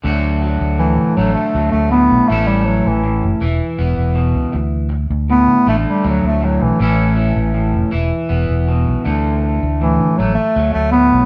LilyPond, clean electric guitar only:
\new Staff \with { instrumentName = "Clean electric guitar" } { \clef bass \time 12/8 \key d \major \tempo 4. = 107 << { <fis a fis'>2. a2. | <e cis' e' a'>2. e'2. | r2. a2. | <e cis' e' a'>2. e'2. |
a2. a2. | } \\ { d4 fis4 a,4 d4 fis4 a,4 | a,2 a,4 e4 b4 b,4 | r2 a,4 d4 fis4 a,4 | a,4 e4 a,4 e4 b4 b,4 |
d2 a,4 r4 fis4 a,4 | } >> }